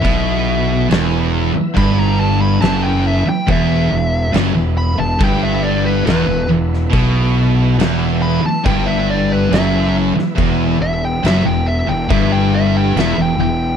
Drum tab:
CC |x---x---x---x---|x---x---x---x---|x---x---x---x---|x---x---x---x---|
SD |----o-------o---|----o-------o--o|----o-------o--o|----o-------o---|
BD |o-------o-------|o-------o-------|o-------o-------|o-------o-------|